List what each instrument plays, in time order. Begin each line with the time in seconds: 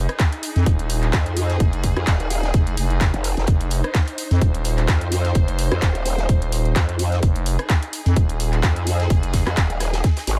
Already playing: string section D#4
0.03 string section G#4
0.09 cross-stick, closed hi-hat
0.19 kick, snare, clap, closed hi-hat
0.32 closed hi-hat
0.43 closed hi-hat, open hi-hat
0.56 fm bass F2, snare, closed hi-hat
0.66 fm bass D#1, kick, closed hi-hat
0.79 closed hi-hat
0.89 closed hi-hat, open hi-hat
1.03 clap, closed hi-hat
1.13 wobble bass F2, kick, snare, clap, closed hi-hat
1.26 closed hi-hat
1.37 closed hi-hat, open hi-hat
1.49 snare, closed hi-hat
1.60 fm bass F1, kick, closed hi-hat
1.73 closed hi-hat
1.83 kick, closed hi-hat, open hi-hat
1.97 wobble bass F2, cross-stick, closed hi-hat
2.07 wobble bass D#1, kick, snare, clap, closed hi-hat
2.20 closed hi-hat
2.30 closed hi-hat, open hi-hat
2.43 snare, closed hi-hat
2.54 fm bass F1, kick, closed hi-hat
2.67 closed hi-hat
2.77 fm bass F1, closed hi-hat, open hi-hat
2.90 closed hi-hat
3.01 kick, snare, clap, closed hi-hat
3.14 wobble bass F1, closed hi-hat
3.24 closed hi-hat, open hi-hat
3.37 wobble bass F1, snare, closed hi-hat
3.47 fm bass F1, kick, closed hi-hat
3.61 closed hi-hat
3.70 closed hi-hat, open hi-hat
3.78 string section C5
3.84 cross-stick, closed hi-hat
3.95 kick, snare, clap, closed hi-hat
4.08 closed hi-hat
4.18 closed hi-hat, open hi-hat
4.31 fm bass F2, snare, closed hi-hat
4.41 fm bass D#1, kick, closed hi-hat
4.55 closed hi-hat
4.65 closed hi-hat, open hi-hat
4.78 clap, closed hi-hat
4.88 wobble bass F2, kick, snare, clap, closed hi-hat
5.01 closed hi-hat
5.12 closed hi-hat, open hi-hat
5.25 snare, closed hi-hat
5.35 fm bass F1, kick, closed hi-hat
5.48 closed hi-hat
5.59 closed hi-hat, open hi-hat
5.72 wobble bass F2, cross-stick, closed hi-hat
5.82 wobble bass D#1, kick, snare, clap, closed hi-hat
5.95 closed hi-hat
6.06 closed hi-hat, open hi-hat
6.18 snare, closed hi-hat
6.29 fm bass D#1, kick, closed hi-hat
6.42 closed hi-hat
6.52 closed hi-hat, open hi-hat
6.65 closed hi-hat
6.76 wobble bass F2, kick, snare, clap, closed hi-hat
6.89 closed hi-hat
6.99 closed hi-hat, open hi-hat
7.12 snare, closed hi-hat
7.23 fm bass F1, kick, closed hi-hat
7.36 closed hi-hat
7.46 closed hi-hat, open hi-hat
7.53 string section G#4
7.59 cross-stick, closed hi-hat
7.70 kick, snare, clap, closed hi-hat
7.83 closed hi-hat
7.93 closed hi-hat, open hi-hat
8.05 fm bass F2, snare, closed hi-hat
8.16 fm bass D#1, kick, closed hi-hat
8.29 closed hi-hat
8.40 closed hi-hat, open hi-hat
8.53 clap, closed hi-hat
8.63 wobble bass F2, kick, snare, clap, closed hi-hat
8.76 closed hi-hat
8.87 closed hi-hat, open hi-hat
9.00 snare, closed hi-hat
9.10 fm bass F1, kick, closed hi-hat
9.23 closed hi-hat
9.33 kick, snare, closed hi-hat, open hi-hat
9.47 wobble bass F2, cross-stick, clap, closed hi-hat
9.57 wobble bass D#1, kick, snare, clap, closed hi-hat
9.70 closed hi-hat
9.80 cross-stick, snare, closed hi-hat, open hi-hat
9.93 snare, closed hi-hat
10.04 kick, snare, closed hi-hat
10.16 snare, closed hi-hat, open hi-hat
10.27 wobble bass G#1, snare, closed hi-hat, open hi-hat